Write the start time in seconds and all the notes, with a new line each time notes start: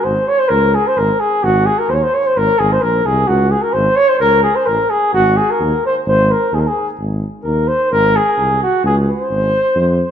0.04 G#1 C5
0.28 C#5
0.39 C5
0.49 C#2 A#4
0.74 G#4
0.87 C5
0.97 G#1 A#4
1.20 G#4
1.42 G#1 F#4
1.66 G#4
1.79 A#4
1.89 D#2 C5
1.94 C#5
2.03 C5
2.14 C#5
2.26 C5
2.36 G#1 A#4
2.59 G#1 G#4
2.72 C5
2.81 A#1 A#4
3.05 C2 G#4
3.28 C#2 F#4
3.51 G#4
3.62 A#4
3.73 G#1 C5
3.96 C#5
4.08 C5
4.20 C#2 A#4
4.43 G#4
4.55 C5
4.66 A1 A#4
4.90 G#4
5.13 G#1 F#4
5.37 G#4
5.50 A#4
5.60 D#2
5.86 C5
6.06 G#1 C5
6.31 A#4
6.53 D#2 G#4
6.60 A#4
6.67 G#4
6.99 G#1
7.43 D#2 A#4
7.67 C5
7.92 G#1 A#4
8.16 G#4
8.38 C2
8.63 F#4
8.84 C#2 G#4
9.10 C5
9.30 G#1
9.76 F2